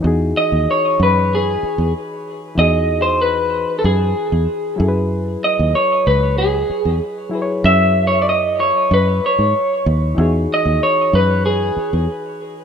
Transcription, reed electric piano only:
\new Staff \with { instrumentName = "Reed electric piano" } { \time 4/4 \key e \major \tempo 4 = 95 <e dis' fis' gis'>1 | <e dis' fis' gis'>2.~ <e dis' fis' gis'>8 <fis e' gis' a' b'>8~ | <fis e' gis' a' b'>2.~ <fis e' gis' a' b'>8 <fis e' gis' b' cis''>8~ | <fis e' gis' b' cis''>2.~ <fis e' gis' b' cis''>8 r8 |
<e dis' fis' gis'>1 | }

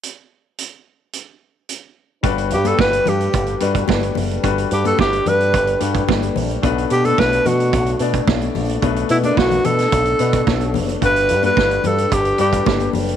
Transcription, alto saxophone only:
\new Staff \with { instrumentName = "Alto saxophone" } { \time 4/4 \key g \major \tempo 4 = 109 r1 | r8 g'16 a'16 b'8 g'4 r4. | r8 g'16 a'16 g'8 b'4 r4. | r8 g'16 a'16 b'8 fis'4 r4. |
r8 e'16 d'16 fis'8 a'2 r8 | b'8. b'8. a'8 g'8 g'4 r8 | }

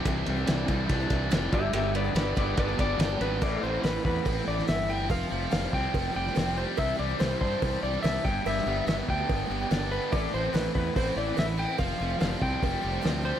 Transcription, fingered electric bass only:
\new Staff \with { instrumentName = "Fingered electric bass" } { \clef bass \time 4/4 \key a \minor \tempo 4 = 143 c,8 c,8 c,8 c,8 c,8 c,8 f,,8 g,,8 | g,,4 g,,8 g,,8 g,,8 g,,8 g,,8 gis,,8 | a,,8 a,,8 a,,8 e,8 a,,8 a,,8 g,,4 | f,,8 f,,8 f,,8 c,8 f,,8 f,,8 f,,4 |
c,8 c,8 c,8 g,8 c,8 c,8 c,8 g,,8 | g,,8 g,,8 g,,8 d,8 g,,8 g,,8 g,,4 | a,,8 a,,8 a,,8 e,8 a,,8 a,,8 a,,4 | f,,8 f,,8 f,,8 c,8 f,,8 f,,8 d,4 | }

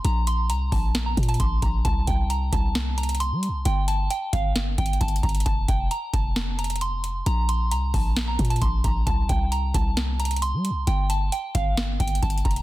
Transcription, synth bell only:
\new Staff \with { instrumentName = "Synth bell" } { \time 4/4 \key c \dorian \tempo 4 = 133 bes''8 c'''8 bes''8 a''8. bes''8 a''16 c'''8 bes''8 | a''8 g''8 bes''8 a''4 bes''8 c'''4 | g''8 a''8 g''8 f''8 r8 g''8 a''8 bes''8 | a''8 g''8 bes''8 a''4 bes''8 c'''4 |
bes''8 c'''8 bes''8 a''8. bes''8 a''16 c'''8 bes''8 | a''8 g''8 bes''8 a''4 bes''8 c'''4 | g''8 a''8 g''8 f''8 r8 g''8 a''8 bes''8 | }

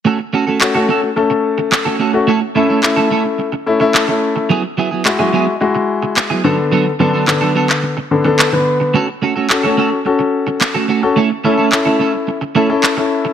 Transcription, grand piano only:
\new Staff \with { instrumentName = "Grand piano" } { \time 4/4 \key fis \minor \tempo 4 = 108 << { r1 | r2. a''4 | r1 | r1 |
r1 | r1 | } \\ { r4 <a cis' fis'>16 <a cis' fis'>8 r16 <a cis' a'>4~ <a cis' a'>16 r8 <a cis' fis'>16 | r8 <a cis' e'>8 <a cis' e'>4~ <a cis' e'>16 r16 <a cis' e'>16 <a cis' e'>8 <a cis' e'>8. | r4 <gis e' fis'>16 <gis e' fis'>8 r16 <gis e' fis'>4~ <gis e' fis'>16 r16 <d b d' a'>8~ | <d b d' a'>16 r16 <d b d' a'>8 <d b d' a'>4~ <d b d' a'>16 r16 <d b d' a'>16 <d b d' a'>8 <d b d' b'>8. |
r4 <cis' fis' a'>16 <cis' fis' a'>8 r16 <cis' fis' a'>4~ <cis' fis' a'>16 r8 <cis' fis' a'>16 | r8 <cis' e' a'>8 <cis' e' a'>4~ <cis' e' a'>16 r16 <cis' e' a'>16 <cis' e' a'>8 <cis' e' a'>8. | } >> }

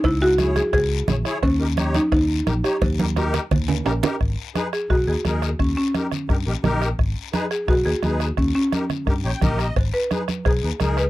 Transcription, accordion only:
\new Staff \with { instrumentName = "Accordion" } { \time 4/4 \key gis \minor \tempo 4 = 173 << { r1 | r1 | r1 | r1 |
r1 | r1 | r2 r8 g''8 dis''4 | r1 | } \\ { r8 <e' gis' e''>8 <e' gis' cis''>8 r4. <e' gis' cis''>8 <e' gis' cis''>8 | r8 <dis' g' ais'>8 <dis' g' cis''>8 r4. <dis' g' ais'>8 <dis' g' cis''>8 | r8 <dis' g' ais'>8 <dis' g' ais'>8 r4. <dis' g' ais'>8 <dis' g' ais'>8 | r4 <dis' gis' b'>8 r8 <dis' gis' b'>8 <dis' gis' b'>8 <dis' gis' ais'>8 r8 |
r4 <dis' g' ais'>8 r8 <dis' g' ais'>8 <dis' g' ais'>8 <dis' g' ais'>8 r8 | r4 <dis' gis' b'>8 r8 <dis' gis' b'>8 <dis' gis' b'>8 <dis' gis' b'>8 r8 | r4 <dis' g' ais'>8 r8 <dis' g' ais'>8 <dis' g' cis''>8 <dis' g' ais'>8 r8 | r4 <dis' gis' b'>8 r8 <dis' gis' b'>8 <dis' gis' b'>8 <dis' gis' ais'>8 r8 | } >> }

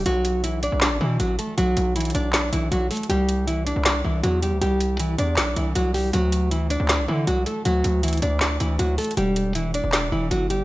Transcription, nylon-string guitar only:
\new Staff \with { instrumentName = "Nylon-string guitar" } { \time 4/4 \key c \lydian \tempo 4 = 158 <fis fis'>4 <e e'>8 <d' d''>8 <d' d''>8 <e e'>8 <fis fis'>8 <a a'>8 | <fis fis'>4 <e e'>8 <d' d''>8 <d' d''>8 <e e'>8 <fis fis'>8 <a a'>8 | <g g'>4 <e e'>8 <d' d''>8 <d' d''>8 <e e'>8 <fis fis'>8 <g g'>8 | <g g'>4 <e e'>8 <d' d''>8 <d' d''>8 <e e'>8 <fis fis'>8 <g g'>8 |
<fis fis'>4 <e e'>8 <d' d''>8 <d' d''>8 <e e'>8 <fis fis'>8 <a a'>8 | <fis fis'>4 <e e'>8 <d' d''>8 <d' d''>8 <e e'>8 <fis fis'>8 <a a'>8 | <g g'>4 <e e'>8 <d' d''>8 <d' d''>8 <e e'>8 <fis fis'>8 <g g'>8 | }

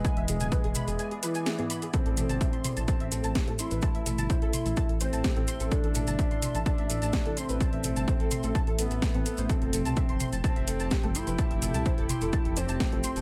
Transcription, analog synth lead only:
\new Staff \with { instrumentName = "Analog synth lead" } { \time 4/4 \key a \minor \tempo 4 = 127 gis2~ gis8 e4. | c'2 c'4. e'8~ | e'2~ e'8 c'4. | d'2 d'4. c'8~ |
c'2~ c'8 b4. | c'2 c'4. e'8~ | e'2~ e'8 c'4. | }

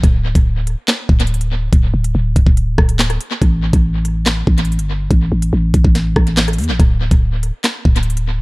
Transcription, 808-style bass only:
\new Staff \with { instrumentName = "808-style bass" } { \clef bass \time 4/4 \key c \mixolydian \tempo 4 = 142 d,,8. d,,4 r8. d,,4. | d,,8 d,,8 d,,8 c,,16 d,,8. d,,4 r8 | a,,8. a,,4.~ a,,16 a,,8. g,,8. | a,,8 a,,8 a,,8 a,,16 a,,8. a,,4 e,16 a,,16 |
d,,8. d,,4 r8. d,,4. | }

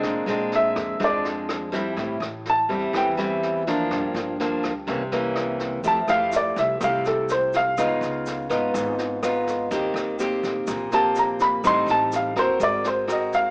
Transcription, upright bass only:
\new Staff \with { instrumentName = "Upright bass" } { \clef bass \time 4/4 \key a \phrygian \tempo 4 = 124 bes,,8 bes,,4 f,8 f,2 | a,,8 a,,4 e,8 e,2 | g,,8 g,,4 d,8 c,2 | f,8 f,4 c,8 c,2 |
cis,8 cis,4 gis,,8 gis,,2 | ees,8 ees,4 bes,,8 bes,,2 | a,,8 a,,4 ees,8 gis,,2 | }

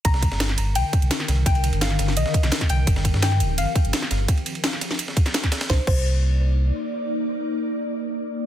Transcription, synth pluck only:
\new Staff \with { instrumentName = "Synth pluck" } { \time 4/4 \key c \minor \tempo 4 = 170 bes''2 g''2 | g''4 f''4 ees''4. g''8~ | g''4 g''4 f''2~ | f''4 r2. |
c''8 c''2.~ c''8~ | c''1 | }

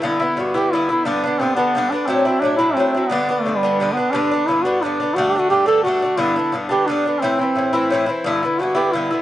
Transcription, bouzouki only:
\new Staff \with { instrumentName = "Bouzouki" } { \time 6/8 \key g \major \tempo 4. = 117 <g, d b e'>8 <d b e'>8 <g, d b e'>8 <g, d b e'>8 <g, d b e'>8 <d b e'>8 | <g, d b d'>8 <d b d'>8 <g, d b d'>8 <g, d b d'>8 <g, d b d'>8 <d b d'>8 | <a, fis d' e'>8 <fis d' e'>8 <a, fis d' e'>8 <a, fis d' e'>8 <a, fis d' e'>8 <fis d' e'>8 | <g, d b d'>8 <d b d'>8 <g, d b d'>8 <g, d b d'>8 <g, d b d'>8 <d b d'>8 |
<g, d b d'>8 <d b d'>8 <g, d b d'>8 <g, d b d'>8 <g, d b d'>8 <d b d'>8 | <g, d a d'>8 <d a d'>8 <g, d a d'>8 <g, d a d'>8 <g, d a d'>8 <d a d'>8 | <g, d b d'>8 <d b d'>8 <g, d b d'>8 <g, d b d'>8 <g, d b d'>8 <d b d'>8 | <a, e c' e'>8 <e c' e'>8 <a, e c' e'>8 <a, e c' e'>8 <a, e c' e'>8 <e c' e'>8 |
<g, d b e'>8 <d b e'>8 <g, d b e'>8 <g, d b e'>8 <g, d b e'>8 <d b e'>8 | }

